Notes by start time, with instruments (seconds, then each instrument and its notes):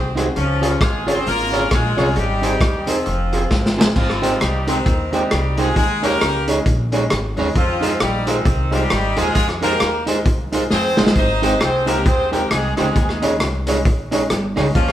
Already playing: upright bass C2, horn section C4 G#4 C5
0.15 upright piano C4 F#4 G#4, clean electric guitar D#4 F#4 C5, cross-stick, closed hi-hat
0.36 upright bass C#2, horn section F3 C#4 F4, closed hi-hat
0.61 upright piano C#4 F4 G#4, clean electric guitar F4 G#4 C#5, closed hi-hat
0.81 upright bass G#1, horn section G#3 F4 G#4, kick, cross-stick, closed hi-hat
1.07 horn section C4 G#4 C5, upright piano C#4 F4 G#4, clean electric guitar F4 G#4 C#5, closed hi-hat
1.26 upright bass G#1, horn section A#3 F4 A#4, upright piano F4 G#4, closed hi-hat
1.52 upright piano C#4 F4 G#4, clean electric guitar F4 G#4 C#5, closed hi-hat
1.71 upright bass A#1, horn section G#3 F4 G#4, kick, cross-stick, closed hi-hat
1.97 upright bass C2, upright piano C#4 F4 G#4, clean electric guitar F4 G#4 C#5, cross-stick, open hi-hat
2.16 upright bass G#1, horn section G3 D#4 G4, closed hi-hat
2.42 upright piano C4 D#4 G#4, clean electric guitar D#4 G#4 C5, closed hi-hat
2.61 upright bass D#2, kick, cross-stick, closed hi-hat
2.87 horn section F3 C4 F4, upright piano C4 D#4 G#4, clean electric guitar D#4 G#4 C5, closed hi-hat
3.06 upright bass F1, closed hi-hat
3.32 upright piano C4 F4 G#4, clean electric guitar F4 G#4 C5, closed hi-hat
3.51 upright bass G#1, kick, snare
3.66 snare
3.77 upright piano C4 F4 G#4, clean electric guitar F4 G#4 C5, snare
3.96 upright bass G#1, horn section F3 C4 F4, kick, crash
4.10 cross-stick
4.22 upright piano G#3 C4 G4, clean electric guitar D#4 G4 C5, closed hi-hat
4.40 upright bass C2, horn section G3 D#4 G4, cross-stick, closed hi-hat
4.67 horn section D#3 C4 D#4, upright piano G#3 C4 G4, clean electric guitar D#4 G4 C5, closed hi-hat
4.86 upright bass D#2, upright piano C4 G4, kick, closed hi-hat
5.12 horn section G3 D#4 G4, upright piano G#3 C4 G4, clean electric guitar D#4 G4 C5, closed hi-hat
5.31 upright bass C2, cross-stick, closed hi-hat
5.57 upright piano G#3 C4 G4, horn section G#3 F4 G#4, clean electric guitar D#4 G4 C5, closed hi-hat
5.75 upright bass D#2, horn section G#3 D#4 G#4, kick, closed hi-hat
6.02 upright piano G#3 C#4 D#4, horn section A#3 G4 A#4, clean electric guitar D#4 G#4 C#5, closed hi-hat
6.21 upright bass C#2, cross-stick, closed hi-hat
6.47 upright piano G#3 C#4 D#4, clean electric guitar D#4 G#4 C#5, closed hi-hat
6.66 upright bass A#1, kick, closed hi-hat
6.92 upright piano G#3 C#4 D#4, clean electric guitar D#4 G#4 C#5, closed hi-hat
7.10 upright bass G#1, cross-stick, closed hi-hat
7.37 upright bass D#2, upright piano G#3 C#4 D#4, clean electric guitar D#4 G#4 C#5, open hi-hat
7.55 upright bass F2, horn section F3 C4 F4, kick, closed hi-hat
7.81 upright piano G#3 D#4 F4, clean electric guitar D#4 G#4 C5, closed hi-hat
8.00 upright bass A#1, horn section G3 D#4 G4, cross-stick, closed hi-hat
8.26 horn section D#3 C4 D#4, upright piano G#3 D#4 F4, clean electric guitar D#4 G#4 C5, closed hi-hat
8.45 upright bass C2, upright piano D#4 F4, kick, closed hi-hat
8.71 horn section G3 D#4 G4, upright piano G#3 D#4 F4, clean electric guitar D#4 G#4 C5, closed hi-hat
8.90 upright bass G#1, cross-stick, closed hi-hat
9.16 upright bass D#2, upright piano G#3 D#4 F4, horn section G#3 F4 G#4, clean electric guitar D#4 G#4 C5, closed hi-hat
9.35 upright bass F2, horn section G#3 F4 G#4, kick, closed hi-hat
9.49 cross-stick
9.62 upright piano G#3 D#4 F4, horn section A#3 G4 A#4, clean electric guitar D#4 G#4 C5, closed hi-hat
9.80 upright bass D#2, cross-stick, closed hi-hat
10.06 upright piano G#3 D#4 F4, clean electric guitar D#4 G#4 C5, closed hi-hat
10.26 upright bass C2, kick, closed hi-hat
10.52 upright piano G#3 D#4 F4, clean electric guitar D#4 G#4 C5, closed hi-hat
10.70 upright bass F2, horn section C4 G#4 C5, snare
10.97 upright bass G1, upright piano G#3 D#4 F4, clean electric guitar D#4 G#4 C5, snare
11.07 snare
11.16 upright bass G#1, horn section D#4 C5 D#5, kick, closed hi-hat
11.42 upright piano G#3 C4 G4, clean electric guitar D#4 G4 C5, closed hi-hat
11.61 upright bass C2, horn section C4 G#4 C5, cross-stick, closed hi-hat
11.86 upright piano G#3 C4 G4, horn section A#3 G4 A#4, clean electric guitar D#4 G4 C5, closed hi-hat
12.06 upright bass D#2, horn section C4 G#4 C5, upright piano C4 G4, kick, closed hi-hat
12.31 upright piano G#3 C4 G4, horn section A#3 G4 A#4, clean electric guitar D#4 G4 C5, closed hi-hat
12.50 upright bass C2, horn section G#3 D#4 G#4, cross-stick, closed hi-hat
12.76 upright bass C#2, horn section G#3 D#4 G#4, upright piano G#3 C4 G4, clean electric guitar D#4 G4 C5, cross-stick, closed hi-hat
12.96 upright bass D#2, kick, closed hi-hat
13.09 cross-stick
13.22 upright piano G#3 C#4 D#4, clean electric guitar D#4 G#4 C#5, closed hi-hat
13.40 upright bass C2, cross-stick, closed hi-hat
13.67 upright piano G#3 C#4 D#4, clean electric guitar D#4 G#4 C#5, closed hi-hat
13.85 upright bass A#1, kick, closed hi-hat
14.11 upright piano G#3 C#4 D#4, clean electric guitar D#4 G#4 C#5, closed hi-hat
14.30 upright bass G1, cross-stick, closed hi-hat
14.56 upright bass C#2, upright piano G#3 C#4 D#4, clean electric guitar D#4 G#4 C#5, cross-stick, open hi-hat
14.74 upright bass D#2, horn section F3 C#4 F4, kick, closed hi-hat
14.88 cross-stick